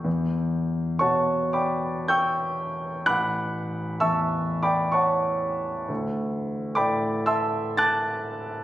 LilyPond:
<<
  \new Staff \with { instrumentName = "Grand piano" } { \time 3/4 \key e \dorian \tempo 4 = 64 r4 <cis'' fis'' a'' cis'''>8 <d'' g'' b'' d'''>8 <g'' cis''' e''' g'''>4 | <fis'' b'' d''' fis'''>4 \tuplet 3/2 { <e'' a'' cis''' e'''>4 <d'' g'' b'' d'''>8 } <cis'' fis'' a'' cis'''>4 | r4 <d'' g'' b'' d'''>8 <e'' a'' c''' e'''>8 <a'' d''' fis''' a'''>4 | }
  \new Staff \with { instrumentName = "Grand piano" } { \clef bass \time 3/4 \key e \dorian e,4 b,2 | a,,4 e,2 | d,4 a,2 | }
>>